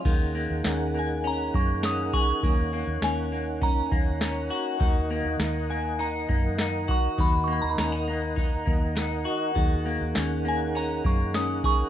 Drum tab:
CC |x-------|--------|--------|--------|
RD |x-x-x-x-|x-x-x-x-|x-x-x-x-|x-x-x-x-|
TB |--x---x-|--x---x-|--x---x-|--x---x-|
SD |--o---o-|--o---o-|--o---o-|--o---o-|
BD |o----o-o|o---oo--|o----o-o|o---oo--|

CC |--------|
RD |x-x-x-x-|
TB |--x---x-|
SD |--o---o-|
BD |o----o-o|